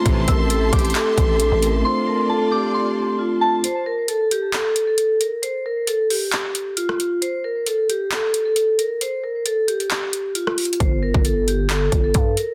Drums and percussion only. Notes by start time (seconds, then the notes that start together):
0.06 kick, closed hi-hat
0.28 kick, closed hi-hat
0.50 closed hi-hat
0.73 kick, closed hi-hat
0.79 closed hi-hat
0.85 closed hi-hat
0.90 closed hi-hat
0.95 clap, closed hi-hat
1.18 kick, closed hi-hat
1.40 closed hi-hat
1.62 closed hi-hat
3.64 closed hi-hat
4.08 closed hi-hat
4.31 closed hi-hat
4.53 clap, closed hi-hat
4.76 closed hi-hat
4.98 closed hi-hat
5.21 closed hi-hat
5.43 closed hi-hat
5.87 closed hi-hat
6.10 open hi-hat
6.32 clap, closed hi-hat
6.55 closed hi-hat
6.77 closed hi-hat
6.89 cross-stick
7.00 closed hi-hat
7.22 closed hi-hat
7.66 closed hi-hat
7.90 closed hi-hat
8.11 clap, closed hi-hat
8.34 closed hi-hat
8.56 closed hi-hat
8.79 closed hi-hat
9.01 closed hi-hat
9.46 closed hi-hat
9.68 closed hi-hat
9.80 closed hi-hat
9.90 clap, closed hi-hat
10.13 closed hi-hat
10.35 closed hi-hat
10.47 cross-stick
10.58 closed hi-hat, open hi-hat
10.65 closed hi-hat
10.73 closed hi-hat
10.80 kick, closed hi-hat
11.14 kick
11.25 closed hi-hat
11.48 closed hi-hat
11.70 clap, closed hi-hat
11.92 kick, closed hi-hat
12.14 kick, closed hi-hat
12.37 closed hi-hat